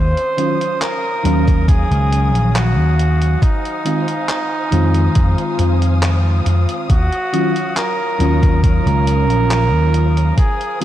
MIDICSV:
0, 0, Header, 1, 6, 480
1, 0, Start_track
1, 0, Tempo, 869565
1, 1888, Time_signature, 4, 2, 24, 8
1, 5985, End_track
2, 0, Start_track
2, 0, Title_t, "String section"
2, 0, Program_c, 0, 48
2, 0, Note_on_c, 0, 61, 76
2, 0, Note_on_c, 0, 77, 71
2, 0, Note_on_c, 0, 87, 86
2, 1872, Note_off_c, 0, 61, 0
2, 1872, Note_off_c, 0, 87, 0
2, 1885, Note_on_c, 0, 87, 82
2, 1886, Note_on_c, 0, 80, 70
2, 1888, Note_on_c, 0, 72, 74
2, 3788, Note_off_c, 0, 80, 0
2, 3789, Note_off_c, 0, 72, 0
2, 3812, Note_on_c, 0, 73, 76
2, 5705, Note_off_c, 0, 87, 0
2, 5711, Note_off_c, 0, 73, 0
2, 5728, Note_on_c, 0, 72, 78
2, 5728, Note_on_c, 0, 80, 70
2, 5729, Note_on_c, 0, 87, 85
2, 5985, Note_off_c, 0, 72, 0
2, 5985, Note_off_c, 0, 77, 0
2, 5985, Note_off_c, 0, 80, 0
2, 5985, Note_off_c, 0, 87, 0
2, 5985, End_track
3, 0, Start_track
3, 0, Title_t, "Flugelhorn"
3, 0, Program_c, 1, 56
3, 0, Note_on_c, 1, 72, 125
3, 425, Note_off_c, 1, 72, 0
3, 446, Note_on_c, 1, 70, 108
3, 905, Note_off_c, 1, 70, 0
3, 929, Note_on_c, 1, 68, 109
3, 1410, Note_on_c, 1, 66, 100
3, 1418, Note_off_c, 1, 68, 0
3, 1890, Note_on_c, 1, 63, 104
3, 1898, Note_off_c, 1, 66, 0
3, 3329, Note_off_c, 1, 63, 0
3, 3805, Note_on_c, 1, 66, 115
3, 4286, Note_on_c, 1, 70, 115
3, 4294, Note_off_c, 1, 66, 0
3, 4761, Note_off_c, 1, 70, 0
3, 4765, Note_on_c, 1, 70, 127
3, 5704, Note_off_c, 1, 70, 0
3, 5725, Note_on_c, 1, 68, 110
3, 5950, Note_off_c, 1, 68, 0
3, 5968, Note_on_c, 1, 68, 105
3, 5985, Note_off_c, 1, 68, 0
3, 5985, End_track
4, 0, Start_track
4, 0, Title_t, "FM electric piano"
4, 0, Program_c, 2, 5
4, 205, Note_on_c, 2, 51, 79
4, 208, Note_on_c, 2, 54, 72
4, 210, Note_on_c, 2, 61, 68
4, 213, Note_on_c, 2, 65, 86
4, 311, Note_off_c, 2, 51, 0
4, 313, Note_off_c, 2, 54, 0
4, 314, Note_off_c, 2, 61, 0
4, 316, Note_off_c, 2, 65, 0
4, 680, Note_on_c, 2, 51, 98
4, 686, Note_on_c, 2, 54, 88
4, 692, Note_on_c, 2, 61, 91
4, 698, Note_on_c, 2, 77, 110
4, 1870, Note_off_c, 2, 51, 0
4, 1873, Note_off_c, 2, 54, 0
4, 1876, Note_off_c, 2, 61, 0
4, 1879, Note_off_c, 2, 77, 0
4, 2123, Note_on_c, 2, 51, 75
4, 2126, Note_on_c, 2, 56, 67
4, 2129, Note_on_c, 2, 60, 68
4, 2132, Note_on_c, 2, 65, 80
4, 2231, Note_off_c, 2, 51, 0
4, 2232, Note_off_c, 2, 56, 0
4, 2234, Note_off_c, 2, 60, 0
4, 2235, Note_off_c, 2, 65, 0
4, 2600, Note_on_c, 2, 51, 98
4, 2605, Note_on_c, 2, 56, 94
4, 2611, Note_on_c, 2, 60, 91
4, 2616, Note_on_c, 2, 65, 105
4, 3790, Note_off_c, 2, 51, 0
4, 3793, Note_off_c, 2, 56, 0
4, 3796, Note_off_c, 2, 60, 0
4, 3798, Note_off_c, 2, 65, 0
4, 4043, Note_on_c, 2, 51, 79
4, 4045, Note_on_c, 2, 54, 71
4, 4048, Note_on_c, 2, 61, 69
4, 4050, Note_on_c, 2, 65, 85
4, 4150, Note_off_c, 2, 51, 0
4, 4151, Note_off_c, 2, 54, 0
4, 4153, Note_off_c, 2, 61, 0
4, 4154, Note_off_c, 2, 65, 0
4, 4517, Note_on_c, 2, 51, 98
4, 4523, Note_on_c, 2, 54, 91
4, 4529, Note_on_c, 2, 61, 93
4, 4534, Note_on_c, 2, 65, 108
4, 5709, Note_off_c, 2, 51, 0
4, 5712, Note_off_c, 2, 54, 0
4, 5715, Note_off_c, 2, 61, 0
4, 5717, Note_off_c, 2, 65, 0
4, 5963, Note_on_c, 2, 51, 73
4, 5966, Note_on_c, 2, 56, 72
4, 5968, Note_on_c, 2, 60, 72
4, 5985, Note_off_c, 2, 51, 0
4, 5985, Note_off_c, 2, 56, 0
4, 5985, Note_off_c, 2, 60, 0
4, 5985, End_track
5, 0, Start_track
5, 0, Title_t, "Slap bass"
5, 0, Program_c, 3, 36
5, 0, Note_on_c, 3, 39, 97
5, 68, Note_off_c, 3, 39, 0
5, 689, Note_on_c, 3, 39, 89
5, 1011, Note_off_c, 3, 39, 0
5, 1052, Note_on_c, 3, 37, 83
5, 1293, Note_off_c, 3, 37, 0
5, 1293, Note_on_c, 3, 34, 88
5, 1534, Note_off_c, 3, 34, 0
5, 1534, Note_on_c, 3, 39, 83
5, 1850, Note_off_c, 3, 39, 0
5, 2609, Note_on_c, 3, 41, 86
5, 2800, Note_off_c, 3, 41, 0
5, 2847, Note_on_c, 3, 41, 82
5, 2946, Note_off_c, 3, 41, 0
5, 3086, Note_on_c, 3, 41, 92
5, 3528, Note_off_c, 3, 41, 0
5, 3566, Note_on_c, 3, 41, 79
5, 3666, Note_off_c, 3, 41, 0
5, 3806, Note_on_c, 3, 39, 101
5, 3906, Note_off_c, 3, 39, 0
5, 4526, Note_on_c, 3, 39, 91
5, 4850, Note_off_c, 3, 39, 0
5, 4890, Note_on_c, 3, 37, 85
5, 5128, Note_off_c, 3, 37, 0
5, 5128, Note_on_c, 3, 34, 90
5, 5371, Note_off_c, 3, 34, 0
5, 5371, Note_on_c, 3, 39, 80
5, 5688, Note_off_c, 3, 39, 0
5, 5985, End_track
6, 0, Start_track
6, 0, Title_t, "Drums"
6, 96, Note_on_c, 9, 42, 36
6, 151, Note_off_c, 9, 42, 0
6, 211, Note_on_c, 9, 42, 78
6, 266, Note_off_c, 9, 42, 0
6, 338, Note_on_c, 9, 42, 52
6, 393, Note_off_c, 9, 42, 0
6, 451, Note_on_c, 9, 39, 116
6, 451, Note_on_c, 9, 42, 83
6, 506, Note_off_c, 9, 39, 0
6, 506, Note_off_c, 9, 42, 0
6, 691, Note_on_c, 9, 42, 83
6, 746, Note_off_c, 9, 42, 0
6, 815, Note_on_c, 9, 36, 102
6, 818, Note_on_c, 9, 42, 53
6, 870, Note_off_c, 9, 36, 0
6, 873, Note_off_c, 9, 42, 0
6, 929, Note_on_c, 9, 36, 117
6, 931, Note_on_c, 9, 42, 82
6, 984, Note_off_c, 9, 36, 0
6, 986, Note_off_c, 9, 42, 0
6, 1057, Note_on_c, 9, 42, 39
6, 1113, Note_off_c, 9, 42, 0
6, 1173, Note_on_c, 9, 42, 79
6, 1228, Note_off_c, 9, 42, 0
6, 1298, Note_on_c, 9, 42, 57
6, 1353, Note_off_c, 9, 42, 0
6, 1411, Note_on_c, 9, 39, 116
6, 1411, Note_on_c, 9, 42, 84
6, 1467, Note_off_c, 9, 39, 0
6, 1467, Note_off_c, 9, 42, 0
6, 1653, Note_on_c, 9, 42, 81
6, 1708, Note_off_c, 9, 42, 0
6, 1775, Note_on_c, 9, 42, 53
6, 1830, Note_off_c, 9, 42, 0
6, 1888, Note_on_c, 9, 36, 122
6, 1891, Note_on_c, 9, 42, 76
6, 1944, Note_off_c, 9, 36, 0
6, 1946, Note_off_c, 9, 42, 0
6, 2016, Note_on_c, 9, 42, 37
6, 2072, Note_off_c, 9, 42, 0
6, 2129, Note_on_c, 9, 42, 78
6, 2184, Note_off_c, 9, 42, 0
6, 2253, Note_on_c, 9, 42, 54
6, 2308, Note_off_c, 9, 42, 0
6, 2368, Note_on_c, 9, 39, 122
6, 2368, Note_on_c, 9, 42, 85
6, 2424, Note_off_c, 9, 39, 0
6, 2424, Note_off_c, 9, 42, 0
6, 2607, Note_on_c, 9, 42, 76
6, 2662, Note_off_c, 9, 42, 0
6, 2730, Note_on_c, 9, 42, 55
6, 2785, Note_off_c, 9, 42, 0
6, 2845, Note_on_c, 9, 42, 83
6, 2848, Note_on_c, 9, 36, 122
6, 2900, Note_off_c, 9, 42, 0
6, 2903, Note_off_c, 9, 36, 0
6, 2972, Note_on_c, 9, 42, 39
6, 3027, Note_off_c, 9, 42, 0
6, 3085, Note_on_c, 9, 42, 81
6, 3140, Note_off_c, 9, 42, 0
6, 3213, Note_on_c, 9, 42, 58
6, 3268, Note_off_c, 9, 42, 0
6, 3327, Note_on_c, 9, 39, 125
6, 3327, Note_on_c, 9, 42, 85
6, 3382, Note_off_c, 9, 39, 0
6, 3382, Note_off_c, 9, 42, 0
6, 3567, Note_on_c, 9, 42, 77
6, 3622, Note_off_c, 9, 42, 0
6, 3692, Note_on_c, 9, 42, 52
6, 3747, Note_off_c, 9, 42, 0
6, 3807, Note_on_c, 9, 36, 126
6, 3807, Note_on_c, 9, 42, 77
6, 3862, Note_off_c, 9, 36, 0
6, 3862, Note_off_c, 9, 42, 0
6, 3933, Note_on_c, 9, 42, 37
6, 3988, Note_off_c, 9, 42, 0
6, 4049, Note_on_c, 9, 42, 77
6, 4105, Note_off_c, 9, 42, 0
6, 4173, Note_on_c, 9, 42, 53
6, 4228, Note_off_c, 9, 42, 0
6, 4288, Note_on_c, 9, 39, 119
6, 4288, Note_on_c, 9, 42, 82
6, 4343, Note_off_c, 9, 39, 0
6, 4343, Note_off_c, 9, 42, 0
6, 4528, Note_on_c, 9, 42, 76
6, 4583, Note_off_c, 9, 42, 0
6, 4652, Note_on_c, 9, 36, 106
6, 4654, Note_on_c, 9, 42, 53
6, 4707, Note_off_c, 9, 36, 0
6, 4709, Note_off_c, 9, 42, 0
6, 4767, Note_on_c, 9, 36, 127
6, 4768, Note_on_c, 9, 42, 81
6, 4823, Note_off_c, 9, 36, 0
6, 4823, Note_off_c, 9, 42, 0
6, 4896, Note_on_c, 9, 42, 38
6, 4951, Note_off_c, 9, 42, 0
6, 5009, Note_on_c, 9, 42, 80
6, 5064, Note_off_c, 9, 42, 0
6, 5134, Note_on_c, 9, 42, 56
6, 5189, Note_off_c, 9, 42, 0
6, 5250, Note_on_c, 9, 39, 122
6, 5250, Note_on_c, 9, 42, 81
6, 5305, Note_off_c, 9, 39, 0
6, 5305, Note_off_c, 9, 42, 0
6, 5488, Note_on_c, 9, 42, 77
6, 5543, Note_off_c, 9, 42, 0
6, 5615, Note_on_c, 9, 42, 51
6, 5670, Note_off_c, 9, 42, 0
6, 5728, Note_on_c, 9, 36, 120
6, 5728, Note_on_c, 9, 42, 74
6, 5783, Note_off_c, 9, 36, 0
6, 5783, Note_off_c, 9, 42, 0
6, 5856, Note_on_c, 9, 42, 37
6, 5911, Note_off_c, 9, 42, 0
6, 5985, End_track
0, 0, End_of_file